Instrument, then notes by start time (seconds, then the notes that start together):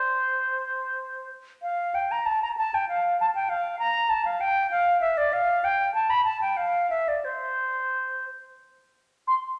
flute
Already playing: C5
1.62 F5
1.95 G5
2.12 A#5
2.26 A5
2.43 A#5
2.57 A5
2.74 G5
2.89 F5
3.20 A5
3.35 G5
3.49 F5
3.79 A#5
4.09 A5
4.25 F5
4.41 G5
4.71 F5
5.01 E5
5.17 D5
5.33 F5
5.64 G5
5.95 A5
6.10 B5
6.25 A5
6.42 G5
6.57 F5
6.90 E5
7.08 D5
7.25 C5
9.28 C6